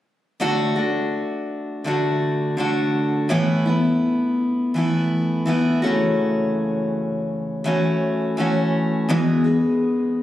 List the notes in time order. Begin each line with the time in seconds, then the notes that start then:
0.40 D3 A3 D4 F#4
0.76 A3 D4 F#4
1.84 D3 A3 D4 F#4
2.57 D3 A3 D4 F#4
3.29 A2 E3 A3 B3 E4
3.66 A3 B3 E4
4.74 E3 A3 B3 E4
5.46 E3 A3 B3 E4
5.82 E3 A3 C#4 F#4
5.86 F#2 C#3
7.64 E3 A3 C#4 F#4
8.37 E3 A3 C#4 F#4
9.09 E2 B2 E3 G#3 B3 G#4
9.44 E3 G#3 B3 G#4